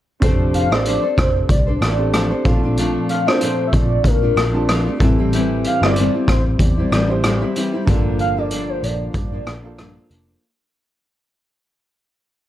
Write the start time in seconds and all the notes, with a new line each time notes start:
0.20 F1 F3 A3 C4 D4 G4 A4 C5, kick, closed hi-hat
0.54 F5, closed hi-hat
0.70 A1 C4 D4 G4 A4 C5 D5, cross-stick
0.85 F3 A3 D4 A4 C5, closed hi-hat
1.03 D4 A4 C5
1.18 F1 C5, kick, cross-stick, closed hi-hat
1.49 C2 D5, kick, closed hi-hat
1.67 D4 A4 C5
1.81 A1 A3 D4 A4 C5, cross-stick, closed hi-hat
1.97 C4 D4 G4 A4
2.13 F3 A3 D4 A4 C5, cross-stick, closed hi-hat
2.30 D4 A4 C5
2.44 A#1 F3 A3 C4 D4 F4 A4, kick, closed hi-hat
2.63 A3 D4 F4
2.77 A#2 F3 A3 D4 F4, closed hi-hat
3.09 F5, closed hi-hat
3.25 C4 D4 F4 A4 C5, cross-stick
3.29 A3
3.41 A#2 F3 A3 D4 F4, closed hi-hat
3.67 E5
3.73 A#1 D5, kick, closed hi-hat
4.04 A#2 A#4, kick, closed hi-hat
4.22 A3 D4 F4
4.36 A#1 F3 A3 D4 F4, cross-stick, closed hi-hat
4.52 C4 D4 F4 A5
4.57 A3
4.68 A#2 F3 A3 D4 F4, cross-stick, closed hi-hat
4.86 A3 D4 F4
4.99 A1 E3 G3 C4 E4 G4 A4, kick, closed hi-hat
5.03 E4
5.18 G3 C4 E4
5.33 A2 E3 G3 C4 E4, closed hi-hat
5.64 F5, closed hi-hat
5.80 G1 C4 E4 G4 C5 D5, cross-stick
5.84 G3
5.96 A2 E3 G3 C4 E4, closed hi-hat
6.14 G3 C4 E4
6.28 A1 C5, kick, cross-stick, closed hi-hat
6.59 E2 D5, kick, closed hi-hat
6.77 G3 C4 E4
6.92 A1 E3 G3 C4 E4, cross-stick, closed hi-hat
7.08 G3 C4 E4 G4 C5
7.24 A2 E3 G3 C4 E4, cross-stick, closed hi-hat
7.41 G3 C4 E4
7.56 E3 G3 C4 E4, closed hi-hat
7.74 G3 C4 E4
7.85 G1 G2 D3 F3 A#3 D4 F4 A4, kick, closed hi-hat
7.90 D4
8.19 F5, closed hi-hat
8.35 F3 A#3 D4 F4 A4 D5
8.51 G2 D3 F3 A#3 D4 D5, closed hi-hat
8.69 C5
8.83 A#1 D5, closed hi-hat
9.14 G2, kick, closed hi-hat
9.32 F3 A#3 D4
9.46 A#1 D3 F3 A#3 D4, cross-stick, closed hi-hat
9.63 F3 A#3 D4 F4 A4
9.78 G2 D3 F3 A#3 D4, cross-stick, closed hi-hat
9.95 F3 A#3 D4
10.09 F1 D3 F3 A#3 D4, closed hi-hat
10.27 F3 A#3 D4